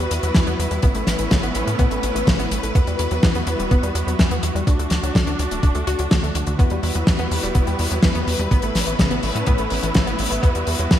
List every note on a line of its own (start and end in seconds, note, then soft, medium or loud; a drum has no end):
0.00 0.81 G3 medium
0.00 0.81 B3 medium
0.00 4.63 E4 medium
0.00 0.81 F#4 medium
0.00 0.81 B4 medium
0.11 0.20 E2 medium
0.11 closed hi-hat loud
0.23 0.32 E2 medium
0.23 0.28 F#3 medium
0.23 closed hi-hat medium
0.35 0.44 E2 loud
0.35 0.46 E3 loud
0.35 kick loud
0.35 snare loud
0.35 closed hi-hat medium
0.47 0.56 E2 medium
0.47 0.56 B3 loud
0.47 closed hi-hat medium
0.59 0.68 E2 medium
0.59 closed hi-hat medium
0.71 0.80 E2 medium
0.71 0.80 G3 medium
0.71 closed hi-hat medium
0.82 0.92 A1 loud
0.82 2.73 A3 medium
0.82 0.94 B3 loud
0.82 2.73 B3 medium
0.82 2.73 C#4 medium
0.82 4.63 B4 medium
0.82 kick loud
0.82 closed hi-hat medium
0.95 1.04 A1 medium
0.95 1.04 A3 medium
0.95 closed hi-hat medium
1.07 1.16 A1 medium
1.07 snare medium
1.07 closed hi-hat medium
1.19 1.28 A1 medium
1.19 1.24 E3 medium
1.19 closed hi-hat medium
1.31 1.40 A1 loud
1.31 1.43 C#3 loud
1.31 kick loud
1.31 snare loud
1.31 closed hi-hat medium
1.43 1.52 A1 medium
1.43 1.52 B3 loud
1.43 closed hi-hat medium
1.55 1.64 A1 medium
1.55 closed hi-hat medium
1.67 1.76 A2 medium
1.67 1.76 A3 medium
1.67 closed hi-hat medium
1.79 1.88 A2 loud
1.79 1.90 B3 loud
1.79 kick loud
1.79 closed hi-hat medium
1.91 2.00 A1 medium
1.91 2.00 A3 medium
1.91 closed hi-hat medium
2.03 2.12 A1 medium
2.03 closed hi-hat loud
2.15 2.24 A1 medium
2.15 2.20 E3 medium
2.15 closed hi-hat medium
2.27 2.36 A1 loud
2.27 2.38 C#3 loud
2.27 kick loud
2.27 snare loud
2.27 closed hi-hat medium
2.39 2.48 A1 medium
2.39 2.48 B3 loud
2.39 closed hi-hat medium
2.51 2.60 A1 medium
2.51 closed hi-hat medium
2.63 2.72 A1 medium
2.63 2.72 A3 medium
2.63 closed hi-hat medium
2.75 2.84 E2 loud
2.75 4.65 G3 medium
2.75 4.65 B3 medium
2.75 2.87 B3 loud
2.75 8.47 F#4 medium
2.75 kick loud
2.75 closed hi-hat medium
2.87 2.96 E2 medium
2.87 2.96 G3 medium
2.87 closed hi-hat medium
2.99 3.08 E2 medium
2.99 closed hi-hat loud
3.11 3.20 E2 medium
3.11 3.16 F#3 medium
3.11 closed hi-hat soft
3.23 3.32 E2 loud
3.23 3.35 E3 loud
3.23 kick loud
3.23 snare loud
3.23 closed hi-hat medium
3.35 3.44 E2 medium
3.35 3.44 B3 loud
3.35 closed hi-hat medium
3.47 3.56 E2 medium
3.47 closed hi-hat medium
3.59 3.68 E1 medium
3.59 3.68 G3 medium
3.59 closed hi-hat medium
3.71 3.80 E1 loud
3.71 3.83 B3 loud
3.71 kick loud
3.71 closed hi-hat medium
3.83 3.92 E2 medium
3.83 3.92 G3 medium
3.83 closed hi-hat medium
3.95 4.04 E2 medium
3.95 closed hi-hat medium
4.07 4.16 E2 medium
4.07 4.12 F#3 medium
4.07 closed hi-hat medium
4.19 4.28 E2 loud
4.19 4.31 E3 loud
4.19 kick loud
4.19 snare loud
4.19 closed hi-hat medium
4.31 4.40 E2 medium
4.31 4.40 B3 loud
4.31 closed hi-hat medium
4.43 4.52 E2 medium
4.43 closed hi-hat loud
4.55 4.64 E2 medium
4.55 4.64 G3 medium
4.55 closed hi-hat soft
4.67 4.76 D2 loud
4.67 6.57 A3 medium
4.67 6.57 D4 medium
4.67 4.79 D4 loud
4.67 kick loud
4.67 closed hi-hat medium
4.79 4.88 D2 medium
4.79 4.88 A3 medium
4.79 closed hi-hat medium
4.90 5.00 D2 medium
4.90 snare medium
4.90 closed hi-hat medium
5.03 5.12 D2 medium
5.03 5.08 F#3 medium
5.03 closed hi-hat medium
5.15 5.24 D2 loud
5.15 5.27 D3 loud
5.15 kick loud
5.15 snare loud
5.15 closed hi-hat medium
5.27 5.36 D2 medium
5.27 5.36 D4 loud
5.27 closed hi-hat medium
5.39 5.48 D2 medium
5.39 closed hi-hat medium
5.51 5.60 D1 medium
5.51 5.60 A3 medium
5.51 closed hi-hat medium
5.63 5.72 D1 loud
5.63 5.75 D4 loud
5.63 kick loud
5.63 closed hi-hat medium
5.75 5.84 D2 medium
5.75 5.84 A3 medium
5.75 closed hi-hat soft
5.87 5.96 D2 medium
5.87 5.98 F#4 loud
5.87 closed hi-hat medium
5.99 6.08 D2 medium
5.99 6.10 F#3 medium
5.99 closed hi-hat medium
6.11 6.20 D2 loud
6.11 6.22 D3 medium
6.11 kick loud
6.11 snare loud
6.11 closed hi-hat medium
6.23 6.32 D2 medium
6.23 6.28 A3 medium
6.23 closed hi-hat medium
6.35 6.44 D2 medium
6.35 6.40 D3 medium
6.35 closed hi-hat loud
6.47 6.56 D2 medium
6.47 6.58 D3 medium
6.47 closed hi-hat soft
6.59 6.68 E2 loud
6.59 8.49 G3 medium
6.59 6.70 B3 loud
6.59 8.49 B3 medium
6.59 8.49 E4 medium
6.59 10.99 B4 medium
6.59 kick loud
6.59 closed hi-hat medium
6.70 6.80 E2 medium
6.70 6.80 G3 medium
6.70 closed hi-hat soft
6.83 6.92 E2 medium
6.83 open hi-hat loud
6.95 7.04 E2 medium
6.95 7.00 F#3 medium
6.95 closed hi-hat medium
7.07 7.16 E2 loud
7.07 7.18 E3 medium
7.07 kick loud
7.07 snare loud
7.07 closed hi-hat medium
7.19 7.28 E2 medium
7.19 7.28 B3 loud
7.19 closed hi-hat soft
7.31 7.40 E2 loud
7.31 open hi-hat loud
7.43 7.52 E1 medium
7.43 7.52 G3 medium
7.43 closed hi-hat medium
7.55 7.64 E1 loud
7.55 7.66 B3 loud
7.55 kick loud
7.55 closed hi-hat medium
7.67 7.76 E2 medium
7.67 7.76 G3 medium
7.67 closed hi-hat medium
7.79 7.88 E2 medium
7.79 open hi-hat loud
7.91 8.00 E2 medium
7.91 7.96 F#3 medium
7.91 closed hi-hat medium
8.03 8.12 E2 loud
8.03 8.14 E3 loud
8.03 kick loud
8.03 snare loud
8.03 closed hi-hat medium
8.15 8.24 E2 medium
8.15 8.24 B3 loud
8.15 closed hi-hat soft
8.27 8.36 E2 medium
8.27 open hi-hat loud
8.39 8.48 E2 medium
8.39 8.48 G3 medium
8.39 closed hi-hat soft
8.51 8.60 A1 loud
8.51 10.41 A3 medium
8.51 8.63 B3 loud
8.51 10.99 B3 medium
8.51 10.41 C#4 medium
8.51 10.99 E4 medium
8.51 kick loud
8.51 closed hi-hat medium
8.62 8.72 A1 medium
8.62 8.72 A3 medium
8.62 closed hi-hat medium
8.75 8.84 A1 medium
8.75 snare medium
8.75 open hi-hat loud
8.87 8.96 A1 medium
8.87 8.92 E3 medium
8.87 closed hi-hat medium
8.99 9.08 A1 loud
8.99 9.10 C#3 loud
8.99 kick loud
8.99 snare loud
8.99 closed hi-hat medium
9.11 9.20 A1 medium
9.11 9.20 B3 loud
9.11 closed hi-hat medium
9.23 9.32 A1 medium
9.23 open hi-hat loud
9.35 9.44 A2 medium
9.35 9.44 A3 medium
9.35 closed hi-hat medium
9.46 9.56 A2 loud
9.46 9.58 B3 loud
9.46 kick loud
9.46 closed hi-hat medium
9.58 9.68 A1 medium
9.58 9.67 A3 medium
9.58 closed hi-hat soft
9.70 9.80 A1 medium
9.70 open hi-hat loud
9.83 9.92 A1 medium
9.83 9.88 E3 medium
9.83 closed hi-hat medium
9.94 10.04 A1 loud
9.94 10.06 C#3 loud
9.94 kick loud
9.94 snare loud
9.94 closed hi-hat medium
10.07 10.16 A1 medium
10.07 10.15 B3 loud
10.07 closed hi-hat medium
10.19 10.28 A1 medium
10.19 open hi-hat loud
10.31 10.40 A1 medium
10.31 10.39 A3 medium
10.31 closed hi-hat medium
10.43 10.52 E2 loud
10.43 10.99 G3 medium
10.43 10.54 B3 loud
10.43 10.99 F#4 medium
10.43 kick loud
10.43 closed hi-hat medium
10.55 10.64 E2 medium
10.55 10.64 G3 medium
10.55 closed hi-hat medium
10.67 10.76 E2 medium
10.67 open hi-hat loud
10.78 10.88 E2 medium
10.78 10.84 F#3 medium
10.78 closed hi-hat medium
10.91 10.99 E2 loud
10.91 10.99 E3 loud
10.91 kick loud
10.91 snare loud
10.91 closed hi-hat medium